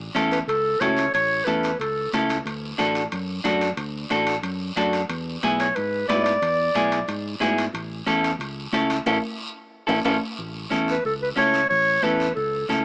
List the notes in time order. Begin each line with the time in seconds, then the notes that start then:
0.15 E2 C#4 E4 A4, high conga, high timbale, short guiro
0.31 B4, high timbale, short guiro
0.47 C#2 A4, high conga, high timbale, long guiro
0.81 C#2 C#4 E4 A4 C#5, high conga, high timbale, low timbale, short guiro
0.97 high timbale, short guiro
1.14 A1 C#5, high conga, high timbale, long guiro
1.45 E2 C#4 E4 A4 B4, high conga, high timbale, short guiro
1.63 high timbale, short guiro
1.79 C#2 A4, high conga, high timbale, long guiro
2.13 C#2 C#4 E4 A4, high conga, high timbale, short guiro
2.30 high timbale, short guiro
2.45 D2, high conga, high timbale, long guiro
2.78 A1 D4 F#4 A4, high conga, high timbale, short guiro
2.95 high timbale, short guiro
3.12 F#2, high conga, high timbale, long guiro
3.44 F#2 D4 F#4 A4, high conga, high timbale, short guiro
3.61 high timbale, short guiro
3.77 D2, high conga, high timbale, long guiro
4.10 A1 D4 F#4 A4, high conga, high timbale, short guiro
4.27 high timbale, short guiro
4.43 F#2, high conga, high timbale, long guiro
4.76 F#2 D4 F#4 A4, high conga, high timbale, short guiro
4.93 high timbale, short guiro
5.09 E2, high conga, high timbale, long guiro
5.43 B1 B3 E4 G#4, high conga, high timbale, short guiro
5.60 C#5, high timbale, short guiro
5.76 G#2 B4, high conga, high timbale, long guiro
6.09 G#2 B3 E4 B4 D5, high conga, high timbale, low timbale, short guiro
6.24 D5, high timbale, short guiro
6.42 E2, high conga, high timbale, long guiro
6.75 B1 B3 E4 G#4, high conga, high timbale, short guiro
6.92 high timbale, short guiro
7.08 G#2, high conga, high timbale, long guiro
7.40 G#2 B3 E4 G#4, high conga, high timbale, low timbale, short guiro
7.58 high timbale, short guiro
7.73 A1, high conga, high timbale, long guiro
8.06 E2 C#4 E4 A4, high conga, high timbale, short guiro
8.24 high timbale, short guiro
8.39 C#2, high conga, high timbale, long guiro
8.73 C#2 C#4 E4 A4, high conga, high timbale, short guiro
8.90 high timbale, short guiro
9.06 A1 C#4 E4 A4, high conga, high timbale, long guiro
9.87 A1 C#4 E4 A4, high conga, high timbale, long guiro
10.05 A1 C#4 E4 A4, high conga, high timbale, long guiro
10.39 A1, high conga, long guiro
10.70 E2 C#4 E4 A4, high conga, short guiro
10.88 B4, short guiro
11.05 C#2 A4, high conga, long guiro
11.22 B4
11.36 C#2 C#4 E4 A4 C#5, high conga, short guiro
11.54 short guiro
11.70 A1 C#5, high conga, long guiro
12.02 E2 C#4 E4 A4 B4, high conga, short guiro
12.20 short guiro
12.35 C#2 A4, high conga, long guiro
12.69 C#2 C#4 E4 A4, high conga, short guiro